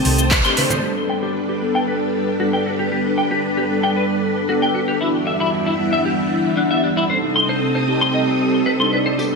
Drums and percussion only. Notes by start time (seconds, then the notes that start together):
0.05 open hi-hat
0.18 closed hi-hat, shaker
0.31 kick, clap, closed hi-hat, shaker
0.44 closed hi-hat, shaker
0.57 open hi-hat, high conga
0.70 closed hi-hat, high conga, low conga, shaker
9.19 tambourine